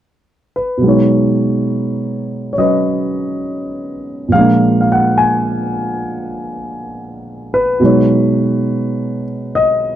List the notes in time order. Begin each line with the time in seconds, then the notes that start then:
0.56 B4
0.78 B2
0.82 F#3 G#3
0.86 D#4 C#5
2.53 C#5
2.57 F#3 C#4 B4 D#5
4.28 A#2 F3 F5
4.35 G#3 D4
4.40 A#3
4.81 F5
4.92 F#5
5.18 G#5
7.54 B4
7.80 B2 F#3 G#3 D#4
7.85 C#5
9.55 D#5